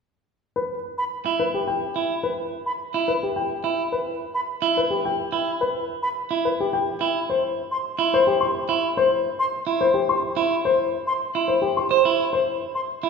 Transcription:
0.56 0.74 B4 medium
0.98 1.04 B5 medium
1.26 1.44 E4 soft
1.40 1.58 B4 medium
1.54 1.72 G4 soft
1.67 1.86 G5 medium
1.96 2.14 E4 soft
2.23 2.42 B4 medium
2.66 2.72 B5 medium
2.94 3.12 E4 soft
3.08 3.26 B4 medium
3.23 3.41 G4 soft
3.36 3.54 G5 medium
3.64 3.82 E4 soft
3.92 4.11 B4 medium
4.34 4.40 B5 medium
4.62 4.80 E4 medium
4.77 4.95 B4 medium
4.90 5.09 G4 soft
5.05 5.23 G5 medium
5.32 5.51 E4 soft
5.61 5.79 B4 medium
6.02 6.08 B5 medium
6.31 6.49 E4 soft
6.45 6.63 B4 medium
6.60 6.77 G4 medium
6.73 6.91 G5 medium
7.01 7.19 E4 soft
7.30 7.47 C5 medium
7.71 7.77 C6 medium
7.99 8.17 E4 medium
8.14 8.31 C5 medium
8.27 8.45 G4 medium
8.41 8.59 C6 medium
8.69 8.87 E4 soft
8.97 9.15 C5 medium
9.39 9.45 C6 medium
9.67 9.85 E4 medium
9.81 9.99 C5 medium
9.94 10.13 G4 medium
10.09 10.27 C6 medium
10.37 10.55 E4 medium
10.65 10.83 C5 medium
11.07 11.13 C6 medium
11.35 11.53 E4 medium
11.48 11.67 C5 medium
11.62 11.81 G4 medium
11.77 11.95 C6 soft
11.91 12.05 C5 medium
12.05 12.24 E4 soft
12.33 12.51 C5 medium
12.75 12.81 C6 medium
13.03 13.10 E4 soft

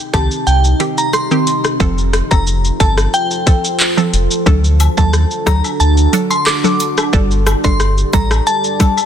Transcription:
0.00 1.78 C3 medium
0.00 1.78 C4 medium
0.00 1.78 D#4 medium
0.00 0.10 G4 medium
0.00 1.78 G4 medium
0.13 0.28 C2 loud
0.13 0.44 D#3 medium
0.13 0.44 C4 medium
0.13 0.45 G4 medium
0.13 0.29 A5 medium
0.13 kick loud
0.13 cross-stick loud
0.13 closed hi-hat medium
0.13 shaker medium
0.31 shaker medium
0.47 0.74 C2 loud
0.47 0.62 G5 medium
0.47 shaker medium
0.64 shaker medium
0.80 0.98 D#3 medium
0.80 0.98 C4 medium
0.80 0.98 G4 medium
0.80 closed hi-hat medium
0.80 shaker medium
0.98 1.12 A#5 medium
0.98 shaker medium
1.13 1.61 C6 medium
1.13 cross-stick medium
1.13 shaker medium
1.31 1.47 D#3 medium
1.31 1.47 C4 medium
1.31 1.47 G4 medium
1.31 shaker medium
1.47 closed hi-hat medium
1.47 shaker soft
1.65 cross-stick medium
1.65 shaker medium
1.80 2.22 F1 loud
1.80 2.27 F3 loud
1.80 4.44 F3 medium
1.80 2.27 C4 medium
1.80 4.44 F4 medium
1.80 9.06 A4 medium
1.80 2.27 A4 loud
1.80 4.44 C5 medium
1.80 kick loud
1.80 shaker medium
1.98 shaker soft
2.13 cross-stick loud
2.13 closed hi-hat medium
2.13 shaker soft
2.31 2.71 F1 loud
2.31 2.76 F3 medium
2.31 2.76 C4 medium
2.31 2.77 A4 medium
2.31 2.45 A#5 medium
2.31 kick medium
2.31 shaker medium
2.47 shaker medium
2.65 shaker medium
2.80 3.07 G1 loud
2.80 3.11 F3 medium
2.80 3.11 C4 medium
2.80 3.11 A4 medium
2.80 2.95 A5 medium
2.80 kick loud
2.80 closed hi-hat medium
2.80 shaker medium
2.98 cross-stick loud
2.98 shaker medium
3.14 3.62 G5 loud
3.14 shaker medium
3.31 shaker medium
3.46 3.64 F3 medium
3.46 3.64 C4 medium
3.46 3.64 A4 medium
3.46 kick medium
3.46 closed hi-hat medium
3.46 shaker medium
3.65 shaker medium
3.80 clap loud
3.80 shaker medium
3.97 4.13 F3 medium
3.97 4.13 C4 medium
3.97 4.13 A4 medium
3.97 shaker medium
4.13 4.28 F1 medium
4.13 closed hi-hat medium
4.13 shaker soft
4.31 shaker medium
4.46 4.88 D2 loud
4.46 7.11 D3 medium
4.46 4.93 F#3 medium
4.46 4.93 D4 medium
4.46 7.11 D4 medium
4.46 7.11 F#4 medium
4.46 4.94 A4 loud
4.46 kick loud
4.46 shaker medium
4.64 shaker medium
4.80 closed hi-hat medium
4.80 cabasa medium
4.80 high woodblock medium
4.80 shaker soft
4.97 5.25 D#2 medium
4.97 5.43 F#3 medium
4.97 5.43 D4 medium
4.97 5.43 A4 medium
4.97 5.11 A5 medium
4.97 kick medium
4.97 shaker medium
5.13 cross-stick medium
5.13 shaker medium
5.31 shaker soft
5.46 5.61 D2 loud
5.46 5.77 F#3 medium
5.46 5.78 D4 medium
5.46 5.78 A4 medium
5.46 5.62 A#5 medium
5.46 kick loud
5.46 cross-stick loud
5.46 closed hi-hat medium
5.46 cabasa medium
5.46 shaker medium
5.64 high woodblock medium
5.64 shaker medium
5.80 6.07 D2 loud
5.80 5.95 A5 medium
5.80 shaker medium
5.97 shaker medium
6.13 6.31 F#3 medium
6.13 6.31 D4 medium
6.13 6.31 A4 medium
6.13 closed hi-hat medium
6.13 cabasa medium
6.13 shaker medium
6.31 6.44 C6 medium
6.31 high woodblock medium
6.31 shaker medium
6.46 6.94 D6 medium
6.46 cross-stick loud
6.46 clap medium
6.46 shaker medium
6.64 6.80 F#3 medium
6.64 6.80 D4 medium
6.64 6.80 A4 medium
6.64 shaker medium
6.80 closed hi-hat medium
6.80 cabasa medium
6.80 shaker medium
6.98 cross-stick medium
6.98 high woodblock medium
6.98 shaker medium
7.13 7.55 G1 loud
7.13 7.60 G3 loud
7.13 9.06 G3 medium
7.13 7.60 D4 medium
7.13 9.06 G4 medium
7.13 7.60 A4 loud
7.13 9.06 D5 medium
7.13 kick loud
7.13 shaker medium
7.31 shaker medium
7.47 cross-stick loud
7.47 closed hi-hat medium
7.47 cabasa medium
7.47 high woodblock medium
7.47 shaker soft
7.64 8.04 G1 loud
7.64 8.10 G3 medium
7.64 8.10 D4 medium
7.64 8.10 A4 medium
7.64 7.78 C6 medium
7.64 kick medium
7.64 shaker medium
7.80 cross-stick medium
7.80 shaker medium
7.98 shaker medium
8.13 8.41 A1 loud
8.13 8.44 G3 medium
8.13 8.44 D4 medium
8.13 8.44 A4 medium
8.13 8.29 A#5 medium
8.13 kick loud
8.13 closed hi-hat medium
8.13 cabasa medium
8.13 shaker medium
8.31 cross-stick loud
8.31 high woodblock medium
8.31 shaker medium
8.47 8.95 A5 loud
8.47 shaker medium
8.64 shaker medium
8.80 8.97 G3 medium
8.80 8.98 D4 medium
8.80 8.98 A4 medium
8.80 kick medium
8.80 closed hi-hat medium
8.80 cabasa medium
8.80 shaker medium
8.98 high woodblock medium
8.98 shaker medium

